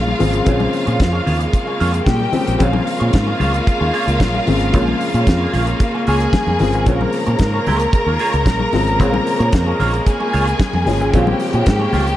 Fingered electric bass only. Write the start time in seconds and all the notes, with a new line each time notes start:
Already playing: A#1
0.21 G#1
0.47 A#1
0.87 A#2
1.00 F2
1.27 D#2
1.81 F2
2.07 A#2
2.48 A#1
2.61 A#1
3.01 A#2
3.14 G#2
3.41 C#2
3.81 D#2
4.07 C#2
4.21 A#1
4.48 G#1
4.74 A#1
5.14 A#2
5.27 F2
5.54 A#1
6.08 C#2
6.47 F2
6.61 G1
6.74 G#1
6.87 A#1
7.27 A#2
7.40 G#2
7.67 C#2
8.06 D#2
8.34 C#2
8.46 A#1
8.74 G#1
9.00 A#1
9.40 A#2
9.53 F2
9.80 A#1
10.34 C#2
10.74 F2
10.87 G1
11.01 G#1
11.14 A#1
11.54 A#2
11.67 G#2
11.94 C#2